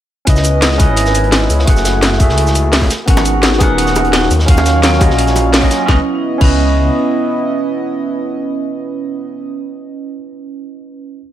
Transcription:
0.25 C#2 B3 C#4 E4 B4 D#5, kick, closed hi-hat
0.29 D#5
0.36 snare, shaker
0.44 closed hi-hat, shaker
0.62 snare, closed hi-hat
0.71 snare
0.78 C#4 E4 B4, kick, closed hi-hat, shaker
0.82 D#5
0.89 G#1
0.96 closed hi-hat
1.06 snare, shaker
1.15 closed hi-hat, shaker
1.24 closed hi-hat
1.32 snare, closed hi-hat
1.42 snare
1.50 C#2, closed hi-hat, shaker
1.59 snare
1.65 F#1 A3 F#4 G#4, kick, closed hi-hat
1.70 F#5
1.77 snare, shaker
1.85 snare, closed hi-hat, shaker
2.02 snare, closed hi-hat
2.12 snare
2.18 A3 F#4 G#4, kick, closed hi-hat, open hi-hat, shaker
2.22 E5
2.29 C#2, snare
2.38 closed hi-hat
2.47 snare, shaker
2.55 closed hi-hat, shaker
2.72 snare, closed hi-hat, open hi-hat
2.81 kick, snare
2.90 F#4, snare, closed hi-hat, shaker
3.06 G#1 B3 C#4 G#4 A#4, kick, closed hi-hat
3.10 F#5
3.16 snare, high bongo, shaker
3.25 closed hi-hat, shaker
3.43 D#4, snare, closed hi-hat
3.53 snare
3.58 B3 G#4 A#4, kick, closed hi-hat, high bongo, shaker
3.63 F#5
3.69 D#1
3.78 C#4, closed hi-hat
3.87 snare, shaker
3.96 closed hi-hat, high bongo, shaker
4.05 closed hi-hat
4.13 D#4, snare, closed hi-hat
4.22 snare
4.31 D#2 F#3 C#5 F5, closed hi-hat, shaker
4.39 snare
4.46 D#2 C#4 F4 F#4, kick, closed hi-hat
4.50 F5
4.57 snare, high bongo, shaker
4.66 snare, closed hi-hat, shaker
4.83 A#3, snare, closed hi-hat
4.92 snare
4.99 C#4 F4 F#4, kick, closed hi-hat, open hi-hat, high bongo, shaker
5.03 D#5
5.10 A#1, snare
5.19 C#4, closed hi-hat
5.27 snare, shaker
5.36 closed hi-hat, high bongo, shaker
5.53 A#3, snare, closed hi-hat, open hi-hat
5.61 C#4 F4 F#4 D#5, kick, snare
5.71 snare, closed hi-hat, shaker
5.86 C#2 B3 C#4 E4 D#5, kick, snare
5.90 B4 D#5
6.38 C#2 C#4 E4, kick, crash
6.42 B4 D#5

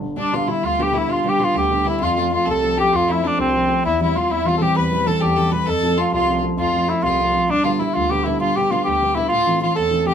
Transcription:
Already playing: G1
0.01 D3
0.17 G2 D4
0.21 D4
0.33 D3 G3 B3 F4
0.46 D3 G3 B3 E4
0.51 E4
0.62 D2 F4
0.79 D3 G3 B3 G4
0.93 D3 G3 B3 E4
0.98 E4
1.08 G2 F4
1.12 F4
1.24 D3 G3 B3 G4
1.29 G4
1.39 D3 G3 B3 F4
1.44 F4
1.54 D2 G4
1.71 D3 G3 B3
1.85 D3 G3 B3 E4
1.89 E4
2.00 F2 F4
2.16 F3 A3 C4 F4
2.20 F4
2.31 F3 A3 C4 F4
2.45 C2 A4
2.50 A4
2.61 F3 A3 C4
2.77 F3 A3 C4 G4
2.92 F2 F4
2.96 F4
3.08 F3 A3 C4 E4
3.23 F3 A3 C4 D4
3.37 C2 C4
3.53 F3 A3 C4
3.68 F3 A3 C4
3.84 E2 E4
4.01 E3 G3 C4 E4
4.15 E3 G3 C4 F4
4.29 E2 E4
4.45 E3 G3 C4 F4
4.58 E3 G3 C4 G4 A4
4.62 G4
4.76 E2 B4
4.92 E3 G3 C4
5.07 E3 G3 C4 A4
5.20 E2 G4
5.36 E3 G3 C4 A4
5.51 E3 G3 C4 B4
5.66 F2 A4
5.83 F3 A3 C4 A4
5.97 F3 A3 F4
6.12 C2 F4
6.27 F3 A3 C4
6.42 F3 A3 C4
6.57 F2 F4
6.73 F3 A3 C4
6.88 F3 A3 C4 E4
7.03 C2 F4
7.19 F3 A3 C4
7.33 F3 A3 C4
7.49 G2 D4
7.64 D3 G3 B3 F4
7.79 D3 G3 B3 E4
7.94 D2 F4
8.10 D3 G3 B3 G4
8.24 D3 G3 B3 E4
8.40 G2 F4
8.56 D3 G3 B3 G4
8.71 D3 G3 B3 F4
8.84 D2 G4
9.02 D3 G3 B3
9.15 D3 G3 B3 E4
9.29 A2 F4
9.46 E3 A3 C4
9.62 E3 A3 F4
9.76 E2 A4
9.91 E3 A3 C4
10.06 E3 A3 C4 G4

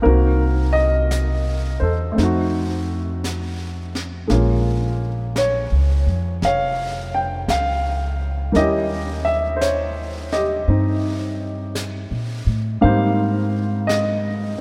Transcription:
0.02 C2 A#3 C4 D#4 A#4, brush sweep
0.07 F#4
0.73 D#5
1.11 brush sweep, snare, hi-hat pedal
1.80 E2 A4 C5
2.12 A3 C4
2.18 F2 D#4, brush sweep, snare
2.23 F#4
3.24 brush sweep, snare, hi-hat pedal
3.95 snare
4.27 A#1 G#3 A#3, brush sweep, snare
4.32 C#4 F4
5.36 C#5, brush sweep, snare, hi-hat pedal
5.72 C#2
6.07 F2
6.42 F1 C#5 F5, brush sweep, snare
7.14 G5
7.48 C#2 F5, brush sweep, snare, hi-hat pedal
8.52 D#2 G3 C#4 A#4 D#5, brush sweep, snare
8.56 E4 G4
9.25 E5
9.56 C5
9.61 C#5, brush sweep, snare, hi-hat pedal
10.32 G4 D#5, snare
10.68 G2 C4 D#4, brush sweep
11.75 brush sweep, snare, hi-hat pedal
12.11 A#2
12.46 A2
12.81 G#2 G3 A#3 C4 D#4 C5 F5, brush sweep
13.87 D#5, brush sweep, snare, hi-hat pedal

